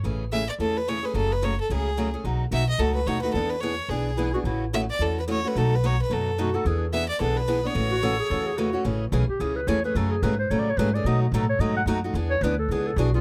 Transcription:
X:1
M:4/4
L:1/16
Q:"Swing" 1/4=218
K:A
V:1 name="Violin"
z4 e2 d2 A2 B2 c2 B2 | A2 B2 c2 A2 G6 z2 | z4 e2 ^d2 A2 B2 c2 B2 | A2 B2 c4 G6 z2 |
z4 e2 d2 A2 B2 c2 B2 | A2 B2 c2 B2 A6 z2 | z4 e2 d2 A2 B4 c2- | c12- c2 z2 |
z16 | z16 | z16 | z16 |]
V:2 name="Clarinet"
z16 | z16 | z16 | z12 E2 F2 |
E3 z12 z | z12 F2 A2 | G3 z12 z | z2 F2 A2 G2 A2 G2 F4 |
z6 =G2 ^G2 B2 c2 B2 | A2 G2 B2 =c2 (3^c2 d2 c2 B2 d2 | ^d2 F2 A2 c2 d2 f2 z4 | z2 c2 B2 A2 G2 A2 F2 =F2 |]
V:3 name="Steel-string acoustic guitar"
[C,E,A,CG]2 z2 [C,E,A,CG]2 z2 [C,E,A,CG]2 z2 [C,E,A,CG]2 [A,CG]2 | [C,F,A,CG]2 z2 [C,F,A,CG]2 z2 [C,F,A,CG]2 z2 [C,F,A,CG]2 [A,CG]2 | [B,,F,A,^DF]2 z2 [B,,F,A,DF]2 z2 [B,,F,A,DF]2 z2 [B,,F,A,DF]2 [A,DF]2 | [E,B,DG]2 z2 [E,B,DG]2 z2 [E,B,DG]2 z2 [E,B,DG]2 [B,DG]2 |
[C,E,A,CF]2 z2 [C,E,A,CF]2 z2 [C,E,A,CF]2 z2 [C,E,A,CF]2 [A,CF]2 | [B,,F,A,^DF]2 z2 [B,,F,A,DF]2 z2 [B,,F,A,DF]2 z2 [B,,F,A,DF]2 [A,DF]2 | [E,B,DG]2 z2 [E,B,DG]2 z2 [E,B,DG]2 z2 [E,B,DG]2 [B,DG]2 | [C,E,A,CF]2 z2 [C,E,A,CF]2 z2 [C,E,A,CF]2 z2 [C,E,A,CF]2 [A,CF]2 |
[C,E,A,CG]2 z2 [C,E,A,CG]2 z2 [C,E,A,CG]2 z2 [C,E,A,CG]2 [A,CG]2 | [C,F,A,CG]2 z2 [C,F,A,CG]2 z2 [C,F,A,CG]2 z2 [C,F,A,CG]2 [A,CG]2 | [B,,F,A,^DF]2 z2 [B,,F,A,DF]2 z2 [B,,F,A,DF]2 z2 [B,,F,A,DF]2 [A,DF]2 | [E,B,DG]2 z2 [E,B,DG]2 z2 [E,B,DG]2 z2 [E,B,DG]2 [B,DG]2 |]
V:4 name="Upright bass" clef=bass
A,,,8 E,,8 | F,,,8 C,,8 | B,,,4 B,,,4 C,,4 ^D,,4 | E,,8 B,,,8 |
A,,,8 E,,8 | B,,,8 F,,8 | E,,8 B,,,8 | A,,,8 E,,8 |
A,,,4 B,,,2 z2 C,,4 E,,4 | F,,4 G,,4 A,,4 G,,4 | B,,4 A,,4 G,,4 F,,4 | E,,4 D,,4 C,,4 B,,,4 |]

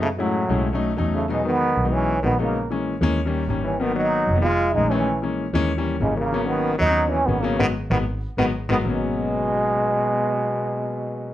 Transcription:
X:1
M:4/4
L:1/16
Q:1/4=190
K:G#m
V:1 name="Trombone"
=A,2 F,8 z4 A,2 | G,2 B,6 C4 B,2 A,2- | A,2 z12 C2 | B,2 D6 =F4 _E2 C2- |
C2 z8 z2 G,2 A,2- | A,2 B,4 D4 C2 B,2 A,2 | B,2 z2 B,2 z4 B,2 z2 B,2 | G,16- |
G,16 |]
V:2 name="Grand piano"
z2 [G,=A,CE]3 z [G,A,CE]2 z [F,A,CD]2 z [F,A,CD]3 z | [F,G,B,D]4- [F,G,B,D] z2 [F,G,B,D]3 z2 [F,G,B,D] z [F,G,B,D]2 | z2 [E,G,A,C]3 z [E,G,A,C]2 z [D,=G,A,C]2 z [D,G,A,C]3 z | [D,F,A,B,]4- [D,F,A,B,] z2 [D,F,A,B,] z4 [_E,G,=A,C] z [E,G,A,C]2 |
z2 [E,G,A,C]3 z [E,G,A,C]2 z [E,=G,A,C]2 z [E,G,A,C]3 z | [F,A,B,C]4- [F,A,B,C] z2 [F,A,B,C]3 z2 [F,A,B,C] z [F,A,B,C]2 | [F,G,B,]2 z2 [F,G,B,]2 z4 [F,G,B,]2 z2 [F,G,B,]2 | [F,A,B,C]16- |
[F,A,B,C]16 |]
V:3 name="Trombone" clef=bass
C,2 =A,,8 z4 C,2 | B,,2 D,6 E,4 D,2 C,2- | C,2 z12 E,2 | D,2 F,6 G,4 G,2 E,2- |
E,2 z8 z2 C,2 C,2- | C,2 D,4 F,4 E,2 D,2 C,2 | D,2 z2 D,2 z4 D,2 z2 D,2 | B,,16- |
B,,16 |]
V:4 name="Double bass" clef=bass
F,,6 B,,,6 E,,4- | E,,6 B,,,6 A,,,4- | A,,,6 D,,6 G,,,4- | G,,,6 ^E,,,6 A,,,4- |
A,,,6 D,,6 G,,,4- | G,,,6 D,,6 G,,,4 | G,,,2 z2 G,,,2 z4 G,,,2 z2 G,,,2 | G,,,16- |
G,,,16 |]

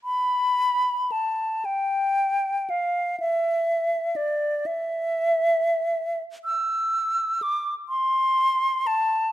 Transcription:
X:1
M:6/8
L:1/8
Q:3/8=39
K:Ephr
V:1 name="Flute"
b2 a g2 f | e2 d e3 | e'2 d' c'2 a |]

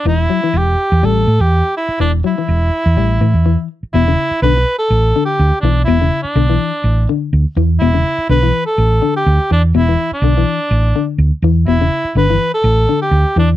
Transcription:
X:1
M:4/4
L:1/16
Q:"Swing 16ths" 1/4=124
K:Edor
V:1 name="Cor anglais"
E4 G4 A3 G3 E2 | D2 E12 z2 | E4 B3 A4 G3 D2 | E3 D8 z4 z |
E4 B3 A4 G3 D2 | E3 D8 z4 z | E4 B3 A4 G3 D2 |]
V:2 name="Clean electric guitar" clef=bass
E,2 F, E,2 z3 G,2 z6 | E,2 F, E,2 z3 G,2 E,2 E,2 z2 | B,, C,2 z D, z4 z D,2 z2 E,2 | B,, C,2 z D, E,2 z3 D,2 z2 E,2 |
B,, C,2 z D, E,2 z3 D,2 z4 | B,, E,2 z D, E,2 z3 D,2 z2 E,2 | B,, C,2 z D, E,2 z3 D,2 z2 E,2 |]
V:3 name="Fingered electric bass" clef=bass
E,,,2 z2 E,,,2 z E,, A,,,2 A,, E,,2 z3 | E,,,2 z2 E,,,2 z E,, A,,,2 A,, E,,2 z3 | E,,,2 z2 B,,,2 z2 A,,,2 z2 D,, z B,,,2 | E,,,2 z2 B,,,2 z2 A,,,2 z2 D,, z E,,2 |
E,,,2 z2 B,,,2 z2 A,,,2 z2 D,, z E,,2 | E,,,2 z2 B,,,2 z2 A,,,2 z2 D,, z E,,2 | E,,,2 z2 G,,,2 z2 A,,,2 z2 D,, z E,,2 |]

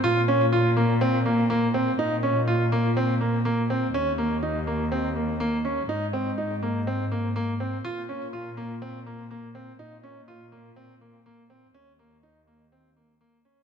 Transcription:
X:1
M:4/4
L:1/8
Q:1/4=123
K:Bbdor
V:1 name="Grand piano"
F D F B, C B, B, C | E D F B, C B, B, C | D B, E B, C B, B, D | E C E B, C B, B, C |
F D F B, C B, B, C | E D F B, C B, B, C | D B, E B, C B, B, D |]
V:2 name="Cello section" clef=bass
B,,8 | B,,8 | E,,8 | A,,8 |
B,,8 | B,,8 | E,,8 |]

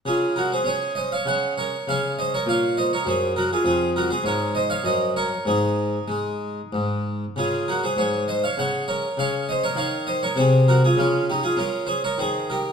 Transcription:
X:1
M:3/4
L:1/16
Q:1/4=100
K:Db
V:1 name="Harpsichord"
[FA]2 [GB] [Ac] [Ad]2 [ce] [df] [dg]2 [Bd]2 | [df]2 [ce] [Bd] [df]2 [ce] [Bd] [Ac]2 [GB] [FA] | [FA]2 [GB] [Ac] [Bd]2 [ce] [df] [ce]2 [Bd]2 | [EA]8- [EA]2 z2 |
[FA]2 [GB] [Ac] [Ad]2 [ce] [df] [dg]2 [Bd]2 | [df]2 [ce] [Bd] [df]2 [ce] [Bd] [Ac]2 [GB] [FA] | [K:Bbdor] [DF]2 [EG] [FA] [FB]2 [Ac] [Bd] [Ac]2 [GB]2 |]
V:2 name="Harpsichord" clef=bass
D,4 D4 D,4 | D,4 B,,4 G,,4 | F,,4 A,,4 G,,4 | A,,4 A,4 A,,4 |
D,4 A,,4 D,4 | D,4 E,4 C,4 | [K:Bbdor] D,4 D4 E,4 |]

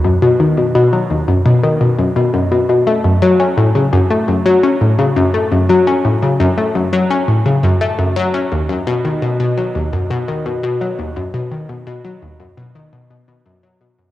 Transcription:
X:1
M:4/4
L:1/16
Q:1/4=85
K:Bmix
V:1 name="Synth arpeggio sound" clef=bass
F,, B,, D, B,, B,, F, D,, F,, B,, D, B,, F,, B,, F,, B,, B,, | A, F,, F, C A,, C, F,, A, F,, F, C A,, C, F,, A, F,, | F, C A,, C, F,, A, F,, F, C A,, C, F,, A, F,, F, C | D,, F,, B,, D, B,, B,, F, D,, F,, B,, D, B,, B,, F, D,, F,, |
B,, D, B,, B,, F, D,, F,, B,, D, B,, B,, B,, F,, F, B,, F,, |]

